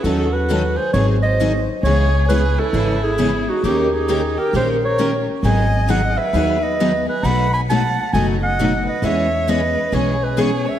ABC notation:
X:1
M:4/4
L:1/8
Q:"Swing" 1/4=133
K:E
V:1 name="Clarinet"
A B2 =c ^c d2 z | c2 B A2 G2 F | =G ^G2 ^A =c ^c2 z | g2 f e2 d2 B |
b b a2 g f2 d | e2 d2 c B c e |]
V:2 name="Violin"
F F2 G G ^B2 z | G2 G E2 E2 D | D D2 =G G ^A2 z | d2 d B2 B2 G |
f g f2 d d2 B | c2 B2 G G G c |]
V:3 name="Steel-string acoustic guitar"
[D,F,CDA] z [D,F,CDA] z [D,F,^B,DG] z [D,F,B,DG] z | [C,G,B,EG] z [C,G,B,EG] z [C,G,B,EG] z [C,G,B,EG] z | [D,^A,C=G^A] z [D,A,CGA] z [D,A,CGA] z [D,A,CGA] z | [D,F,B,DG] z [D,F,B,DG] z [D,F,B,DG] z [D,F,B,DG] z |
[B,,F,A,DFB] z [B,,F,A,DFB] z [B,,F,A,DFB] z [B,,F,A,DFB] z | [E,G,CGc] z [E,G,CGc] z [E,G,CGc] z [E,G,CGc] z |]
V:4 name="Steel-string acoustic guitar"
[D,F,CDA] z [D,F,CDA] z [D,F,^B,DG] z [D,F,B,DG] z | [C,E,B,CG] z [C,E,B,CG] z [C,E,B,CG] z [C,E,B,CG] z | [D,^A,C=G^A] z [D,A,CGA] z [D,A,CGA] z [D,A,CGA] z | [D,F,B,DG] z [D,F,B,DG] z [D,F,B,DG] z [D,F,B,DG] z |
[B,,F,A,DF] z [B,,F,A,DF] z [B,,F,A,DF] z [B,,F,A,DF] z | [E,B,CG] z [E,B,CG] z [E,B,CG] z [E,B,CG] z |]
V:5 name="Upright bass" clef=bass
D,,4 G,,,4 | C,,4 G,,,4 | D,,4 ^A,,,4 | G,,,4 D,,4 |
B,,,4 F,,,4 | E,,4 B,,,4 |]